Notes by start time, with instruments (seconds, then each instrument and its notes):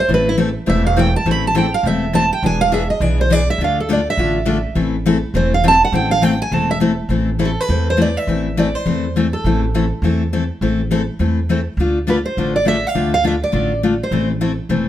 0.09 upright bass A1, steel-string acoustic guitar E3 A3 C4 E4 A4
0.14 steel-string acoustic guitar B4
0.29 steel-string acoustic guitar E4
0.37 steel-string acoustic guitar E3 A3 C4 E4 A4
0.66 upright bass E1, steel-string acoustic guitar E3 A3 C4 E4 A4 E5
0.87 steel-string acoustic guitar F5
0.96 steel-string acoustic guitar E3 A3 C4 E4 A4 G5
1.16 steel-string acoustic guitar A5
1.25 upright bass A1, steel-string acoustic guitar E3 A3 C4 E4 A4
1.31 steel-string acoustic guitar B5
1.47 steel-string acoustic guitar A5
1.55 steel-string acoustic guitar E3 A3 C4 E4 A4 G5
1.74 steel-string acoustic guitar F5
1.83 upright bass E1, steel-string acoustic guitar E3 A3 C4 E4 A4
1.87 steel-string acoustic guitar E5
2.13 steel-string acoustic guitar E3 A3 C4 E4 A4 A5
2.33 steel-string acoustic guitar G5
2.43 upright bass E1, steel-string acoustic guitar E3 B3 D4 G#4 G#5
2.61 steel-string acoustic guitar F5
2.72 steel-string acoustic guitar E3 B3 D4 G#4 E5
2.90 steel-string acoustic guitar D#5
3.00 upright bass B1, steel-string acoustic guitar E3 B3 D4 G#4 D5
3.21 steel-string acoustic guitar C5
3.30 steel-string acoustic guitar E3 B3 D4 G#4 D5
3.50 steel-string acoustic guitar E5
3.58 upright bass D2, steel-string acoustic guitar D3 A3 D4 F4 A4
3.64 steel-string acoustic guitar F5
3.80 steel-string acoustic guitar A4
3.89 steel-string acoustic guitar D3 A3 D4 F4 A4
3.93 steel-string acoustic guitar D5
4.10 steel-string acoustic guitar E5
4.17 upright bass A1, steel-string acoustic guitar D3 A3 D4 F4 A4
4.45 steel-string acoustic guitar D3 A3 D4 F4 A4
4.75 upright bass A1, steel-string acoustic guitar E3 A3 C4 E4 A4
5.06 steel-string acoustic guitar E3 A3 C4 E4 A4
5.34 upright bass E1, steel-string acoustic guitar E3 A3 C4 E4 A4 C5
5.54 steel-string acoustic guitar F5
5.64 steel-string acoustic guitar E3 A3 C4 E4 A4
5.68 steel-string acoustic guitar A5
5.84 steel-string acoustic guitar F#5
5.92 upright bass A1, steel-string acoustic guitar E3 A3 C4 E4 A4 G5
6.11 steel-string acoustic guitar F5
6.22 steel-string acoustic guitar E3 A3 C4 E4 A4 G5
6.42 steel-string acoustic guitar G#5
6.51 upright bass E1, steel-string acoustic guitar E3 A3 C4 E4 A4 A5
6.71 steel-string acoustic guitar E5
6.80 steel-string acoustic guitar E3 A3 C4 E4 A4
7.09 upright bass A1, steel-string acoustic guitar E3 A3 C4 E4 A4
7.39 steel-string acoustic guitar E3 A3 C4 E4 A4
7.45 steel-string acoustic guitar A4
7.60 steel-string acoustic guitar B4
7.68 upright bass E2, steel-string acoustic guitar E3 A3 C4 E4 A4
7.90 steel-string acoustic guitar C5
7.97 steel-string acoustic guitar E3 A3 C4 E4 A4
8.02 steel-string acoustic guitar D5
8.17 steel-string acoustic guitar E5
8.27 upright bass A1, steel-string acoustic guitar E3 A3 C4 E4 A4
8.57 steel-string acoustic guitar E3 A3 C4 E4 A4 D5
8.75 steel-string acoustic guitar C5
8.86 upright bass E2, steel-string acoustic guitar E3 A3 C4 E4 A4
9.16 steel-string acoustic guitar E3 A3 C4 E4 A4
9.33 steel-string acoustic guitar A4
9.44 upright bass A1, steel-string acoustic guitar E3 A3 C4 E4 A4
9.74 steel-string acoustic guitar E3 A3 C4 E4 A4
10.02 upright bass E2, steel-string acoustic guitar E3 A3 C4 E4 A4
10.33 steel-string acoustic guitar E3 A3 C4 E4 A4
10.61 upright bass A1, steel-string acoustic guitar E3 A3 C4 E4 A4
10.91 steel-string acoustic guitar E3 A3 C4 E4 A4
11.19 upright bass E2, steel-string acoustic guitar E3 A3 C4 E4 A4
11.49 steel-string acoustic guitar E3 A3 C4 E4 A4
11.77 upright bass D2, steel-string acoustic guitar D3 A3 D4 F4 A4
12.07 steel-string acoustic guitar D3 A3 D4 F4 A4 B4
12.25 steel-string acoustic guitar C5
12.37 upright bass A1, steel-string acoustic guitar D3 A3 D4 F4 A4
12.56 steel-string acoustic guitar D5
12.65 steel-string acoustic guitar D3 A3 D4 F4 A4 E5
12.87 steel-string acoustic guitar F5
12.95 upright bass D2, steel-string acoustic guitar D3 A3 D4 F4 A4
13.14 steel-string acoustic guitar F5
13.24 steel-string acoustic guitar D3 A3 D4 F4 A4 E5
13.44 steel-string acoustic guitar D5
13.52 upright bass A1, steel-string acoustic guitar D3 A3 D4 F4 A4
13.83 steel-string acoustic guitar D3 A3 D4 F4 A4
14.03 steel-string acoustic guitar C5
14.11 upright bass A1, steel-string acoustic guitar E3 A3 C4 E4 A4
14.41 steel-string acoustic guitar E3 A3 C4 E4 A4
14.69 upright bass E1, steel-string acoustic guitar E3 A3 C4 E4 A4